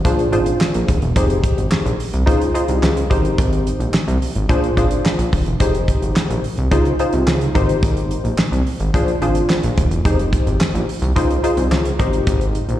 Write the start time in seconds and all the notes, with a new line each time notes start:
0.05 A#1 D4 F4 G#4 C5, kick, closed hi-hat
0.19 closed hi-hat
0.32 G#1 D4 F4 G#4 C5, closed hi-hat
0.46 closed hi-hat
0.61 snare, clap
0.74 A#1, closed hi-hat
0.88 D#1, kick, closed hi-hat
1.02 E1, closed hi-hat
1.16 F1 D#4 G4 G#4 C5, kick, closed hi-hat
1.30 closed hi-hat
1.44 kick, closed hi-hat
1.58 G#1, closed hi-hat
1.71 snare, clap
1.86 A#1, closed hi-hat
2.00 open hi-hat
2.13 C2, closed hi-hat
2.26 C#2 D#4 F4 G#4 C5, kick, closed hi-hat
2.41 closed hi-hat
2.54 D#4 F4 G#4 C5, closed hi-hat
2.68 C2, closed hi-hat
2.83 C#2, snare, clap
2.97 closed hi-hat
3.10 G#1 D#4 G4 A#4 C5, kick, closed hi-hat
3.25 closed hi-hat
3.38 G#1, kick, closed hi-hat
3.52 closed hi-hat
3.67 closed hi-hat
3.80 A#1, closed hi-hat
3.94 snare, clap
4.08 C2, closed hi-hat
4.22 open hi-hat
4.35 G#1, closed hi-hat
4.49 A#1 D4 F4 G#4 C5, kick, closed hi-hat
4.64 closed hi-hat
4.77 G#1 D4 F4 G#4 C5, kick, closed hi-hat
4.91 closed hi-hat
5.05 snare, clap
5.18 A#1, closed hi-hat
5.33 D#1, kick, open hi-hat
5.46 E1, closed hi-hat
5.60 F1 D#4 G4 G#4 C5, kick, closed hi-hat
5.75 closed hi-hat
5.88 kick, closed hi-hat
6.02 G#1, closed hi-hat
6.16 snare, clap
6.30 A#1, closed hi-hat
6.44 open hi-hat
6.57 C2, closed hi-hat
6.71 C#2 D#4 F4 G#4 C5, kick, closed hi-hat
6.85 closed hi-hat
6.99 D#4 F4 G#4 C5, closed hi-hat
7.13 C2, closed hi-hat
7.27 C#2, snare, clap
7.41 closed hi-hat
7.55 G#1 D#4 G4 A#4 C5, kick, closed hi-hat
7.69 closed hi-hat
7.83 G#1, kick, closed hi-hat
7.97 closed hi-hat
8.11 closed hi-hat
8.24 A#1, closed hi-hat
8.38 snare, clap
8.52 C2, closed hi-hat
8.67 open hi-hat
8.80 G#1, closed hi-hat
8.94 A#1 D4 F4 G#4 C5, kick, closed hi-hat
9.08 closed hi-hat
9.22 G#1 D4 F4 G#4 C5, closed hi-hat
9.35 closed hi-hat
9.49 snare, clap
9.63 A#1, closed hi-hat
9.77 D#1, kick, closed hi-hat
9.91 E1, closed hi-hat
10.05 F1 D#4 G4 G#4 C5, kick, closed hi-hat
10.19 closed hi-hat
10.33 kick, closed hi-hat
10.47 G#1, closed hi-hat
10.61 snare, clap
10.74 A#1, closed hi-hat
10.89 open hi-hat
11.02 C2, closed hi-hat
11.16 C#2 D#4 F4 G#4 C5, kick, closed hi-hat
11.30 closed hi-hat
11.43 D#4 F4 G#4 C5, closed hi-hat
11.57 C2, closed hi-hat
11.71 C#2, snare, clap
11.85 closed hi-hat
11.99 G#1 D#4 G4 A#4 C5, kick, closed hi-hat
12.13 closed hi-hat
12.27 G#1, kick, closed hi-hat
12.41 closed hi-hat
12.55 closed hi-hat
12.69 A#1, closed hi-hat